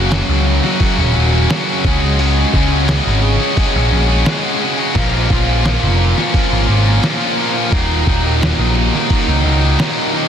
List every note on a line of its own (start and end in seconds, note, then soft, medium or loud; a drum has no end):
0.00 0.20 F#1 loud
0.00 1.13 F#2 medium
0.00 0.11 C#3 loud
0.00 1.13 C#3 medium
0.00 0.11 F#3 medium
0.00 0.12 F#3 medium
0.00 1.14 F#3 loud
0.00 0.11 A#3 medium
0.00 0.12 A#3 medium
0.00 0.12 C#4 medium
0.00 0.13 C#4 medium
0.00 0.13 F#4 medium
0.00 0.14 F#4 medium
0.09 0.80 F#2 loud
0.09 0.80 C#3 loud
0.09 0.43 F#3 medium
0.09 0.43 A#3 medium
0.09 0.46 C#4 medium
0.09 0.47 F#4 loud
0.09 snare loud
0.09 open hi-hat medium
0.28 0.58 C#2 loud
0.28 0.46 F#3 medium
0.28 0.46 A#3 medium
0.28 0.46 C#4 medium
0.28 0.47 F#4 medium
0.44 0.64 F#3 medium
0.44 0.63 A#3 medium
0.44 0.62 C#4 medium
0.44 0.60 F#4 medium
0.44 muted distorted electric guitar stroke soft
0.61 0.78 F#3 medium
0.61 0.79 A#3 medium
0.61 0.81 C#4 medium
0.61 0.81 F#4 medium
0.61 snare soft
0.79 0.99 F#3 medium
0.79 0.98 A#3 medium
0.79 0.98 C#4 loud
0.79 0.95 F#4 loud
0.79 kick medium
0.79 open hi-hat medium
0.97 1.13 D#1 loud
0.97 1.34 F#3 medium
0.97 1.33 A#3 medium
0.97 1.33 C#4 medium
0.97 1.30 F#4 medium
1.15 1.45 D#1 loud
1.15 1.49 F#2 medium
1.15 1.48 C#3 medium
1.15 1.48 F#3 medium
1.32 1.50 F#3 medium
1.32 1.50 A#3 medium
1.32 1.51 C#4 medium
1.32 1.51 F#4 medium
1.49 1.82 F#2 medium
1.49 1.82 C#3 loud
1.49 1.83 F#3 loud
1.49 1.83 A#3 loud
1.49 1.86 C#4 loud
1.49 1.84 F#4 loud
1.49 snare loud
1.49 open hi-hat medium
1.68 1.85 F#3 medium
1.68 1.84 A#3 medium
1.68 1.88 C#4 medium
1.68 1.83 F#4 medium
1.84 2.43 C#2 loud
1.84 2.18 C#3 medium
1.84 2.19 G#3 loud
1.84 2.05 C#4 loud
1.84 2.02 F#4 loud
1.84 2.00 G#4 loud
1.84 kick loud
2.01 2.20 F#4 medium
2.01 2.21 G#4 medium
2.05 2.20 C#4 medium
2.19 2.86 C#3 loud
2.19 2.52 G#3 medium
2.19 2.54 C#4 loud
2.19 2.54 F#4 loud
2.19 2.55 G#4 loud
2.19 open hi-hat medium
2.53 2.98 C#2 loud
2.53 2.87 G#3 medium
2.53 2.74 C#4 medium
2.53 2.71 F#4 medium
2.53 2.69 G#4 medium
2.53 kick medium
2.70 2.88 F#4 medium
2.70 2.89 G#4 medium
2.74 2.88 C#4 medium
2.87 3.57 C#3 medium
2.87 3.20 G#3 medium
2.87 3.23 C#4 loud
2.87 3.22 F#4 loud
2.87 3.24 G#4 loud
2.87 snare loud
2.87 open hi-hat medium
3.03 3.36 G#1 loud
3.03 3.23 C#4 medium
3.03 3.23 F#4 medium
3.03 3.23 G#4 medium
3.21 3.55 G#3 medium
3.21 3.41 C#4 medium
3.21 3.40 F#4 medium
3.21 muted distorted electric guitar stroke medium
3.25 3.37 G#4 medium
3.38 3.56 C#4 medium
3.38 3.57 F#4 medium
3.38 3.58 G#4 medium
3.56 3.90 C#3 medium
3.56 4.09 G#3 medium
3.56 3.75 C#4 medium
3.56 3.74 F#4 medium
3.56 3.72 G#4 medium
3.56 kick medium
3.56 open hi-hat medium
3.73 3.90 A#1 loud
3.73 4.10 C#4 medium
3.73 4.09 F#4 medium
3.73 4.07 G#4 medium
3.92 4.21 A#1 medium
3.92 4.61 C#3 medium
3.92 4.60 G#3 medium
3.92 4.59 C#4 medium
4.08 4.25 C#4 medium
4.08 4.26 F#4 medium
4.08 4.27 G#4 medium
4.24 4.93 C#3 loud
4.24 4.58 G#3 loud
4.24 4.59 C#4 loud
4.24 4.61 F#4 loud
4.24 4.62 G#4 loud
4.24 snare loud
4.24 open hi-hat medium
4.44 4.61 C#4 medium
4.44 4.62 F#4 medium
4.44 4.63 G#4 medium
4.60 4.93 G#3 medium
4.60 4.80 C#4 medium
4.60 4.78 F#4 medium
4.60 4.76 G#4 medium
4.77 4.95 C#4 medium
4.77 4.94 F#4 medium
4.77 4.93 G#4 medium
4.94 5.25 A#1 loud
4.94 5.63 A#2 medium
4.94 5.28 F3 medium
4.94 5.30 A#3 loud
4.94 5.30 C#4 loud
4.94 5.31 F4 loud
4.94 kick loud
4.94 crash loud
5.29 5.74 A#1 loud
5.29 5.64 F3 medium
5.29 5.50 A#3 medium
5.29 5.47 C#4 medium
5.29 5.45 F4 medium
5.29 kick loud
5.46 5.66 A#3 medium
5.46 5.66 C#4 medium
5.46 5.67 F4 medium
5.64 6.34 A#2 medium
5.64 5.98 F3 medium
5.64 6.00 A#3 medium
5.64 6.00 C#4 medium
5.64 6.01 F4 loud
5.64 snare loud
5.64 open hi-hat medium
5.81 6.12 F1 loud
5.81 5.98 A#3 medium
5.81 5.98 C#4 medium
5.81 5.98 F4 medium
5.99 6.31 F3 medium
5.99 6.19 A#3 medium
5.99 6.16 C#4 medium
5.99 6.14 F4 medium
5.99 muted distorted electric guitar stroke medium
6.15 6.33 A#3 medium
6.15 6.33 C#4 medium
6.15 6.35 F4 medium
6.15 snare soft
6.32 6.85 F3 medium
6.32 6.53 A#3 medium
6.32 6.50 C#4 medium
6.32 6.49 F4 medium
6.32 kick loud
6.32 open hi-hat medium
6.50 6.67 G#1 loud
6.50 6.88 A#3 medium
6.50 6.85 C#4 medium
6.50 6.83 F4 medium
6.67 6.98 G#1 medium
6.67 7.01 A#2 medium
6.67 7.01 F3 medium
6.67 7.04 A#3 loud
6.84 7.04 A#3 medium
6.84 7.03 C#4 medium
6.84 7.04 F4 medium
7.02 7.70 A#2 medium
7.02 7.35 F3 medium
7.02 7.37 A#3 loud
7.02 7.38 C#4 loud
7.02 7.39 F4 loud
7.02 snare loud
7.02 open hi-hat medium
7.20 7.39 A#3 medium
7.20 7.39 C#4 medium
7.20 7.40 F4 medium
7.37 7.70 F3 medium
7.37 7.57 A#3 medium
7.37 7.55 C#4 medium
7.37 7.53 F4 medium
7.54 7.72 A#3 medium
7.54 7.71 C#4 medium
7.54 7.70 F4 medium
7.70 8.01 D#1 loud
7.70 8.38 D#2 medium
7.70 8.39 A#2 loud
7.70 8.04 D#3 loud
7.70 8.07 F#3 medium
7.70 8.08 A#3 loud
7.70 8.08 D#4 loud
7.70 kick loud
7.70 open hi-hat medium
8.05 8.50 D#1 medium
8.05 8.26 D#3 medium
8.05 8.25 F#3 medium
8.05 8.24 A#3 medium
8.05 8.22 D#4 medium
8.05 kick medium
8.23 8.40 D#3 medium
8.23 8.42 F#3 medium
8.23 8.42 A#3 medium
8.23 8.42 D#4 medium
8.39 9.09 D#2 medium
8.39 9.10 A#2 medium
8.39 8.74 D#3 loud
8.39 8.76 F#3 loud
8.39 8.76 A#3 loud
8.39 8.77 D#4 loud
8.39 snare loud
8.39 open hi-hat medium
8.58 8.88 A#1 loud
8.58 8.75 D#3 medium
8.58 8.76 F#3 medium
8.58 8.75 A#3 medium
8.58 8.75 D#4 medium
8.75 8.95 D#3 medium
8.75 8.95 F#3 medium
8.75 8.93 A#3 medium
8.75 8.91 D#4 medium
8.75 muted distorted electric guitar stroke soft
8.92 9.08 D#3 medium
8.92 9.11 F#3 medium
8.92 9.11 A#3 medium
8.92 9.12 D#4 medium
8.92 snare soft
9.10 9.30 D#3 medium
9.10 9.30 F#3 medium
9.10 9.27 A#3 medium
9.10 9.26 D#4 medium
9.10 kick loud
9.10 open hi-hat medium
9.27 9.42 C#2 loud
9.27 9.64 D#3 medium
9.27 9.64 F#3 medium
9.27 9.63 A#3 medium
9.27 9.61 D#4 medium
9.44 9.74 C#2 loud
9.44 9.77 D#2 medium
9.44 9.77 A#2 medium
9.44 9.77 D#3 medium
9.62 9.79 D#3 medium
9.62 9.80 F#3 medium
9.62 9.80 A#3 medium
9.62 9.80 D#4 medium
9.78 10.28 D#2 loud
9.78 10.28 A#2 loud
9.78 10.12 D#3 loud
9.78 10.14 F#3 loud
9.78 10.14 A#3 loud
9.78 10.15 D#4 loud
9.78 snare loud
9.78 open hi-hat medium
9.97 10.12 D#3 medium
9.97 10.14 F#3 medium
9.97 10.14 A#3 medium
9.97 10.16 D#4 medium
10.13 10.28 D#3 medium
10.13 10.28 F#3 medium
10.13 10.28 A#3 medium
10.13 10.28 D#4 medium